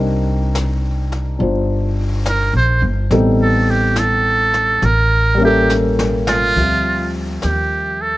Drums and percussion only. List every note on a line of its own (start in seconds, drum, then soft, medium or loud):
0.55 snare medium
0.55 hi-hat pedal medium
1.12 snare soft
1.40 brush sweep soft
2.26 snare medium
2.26 hi-hat pedal medium
3.11 brush sweep soft
3.11 snare soft
3.96 snare medium
3.96 hi-hat pedal medium
4.53 snare soft
4.82 brush sweep soft
4.82 snare soft
5.70 snare soft
5.70 hi-hat pedal medium
5.99 snare medium
6.27 snare medium
6.57 brush sweep soft
6.57 kick soft
6.57 snare soft
6.57 ride soft
7.42 snare soft
7.42 hi-hat pedal soft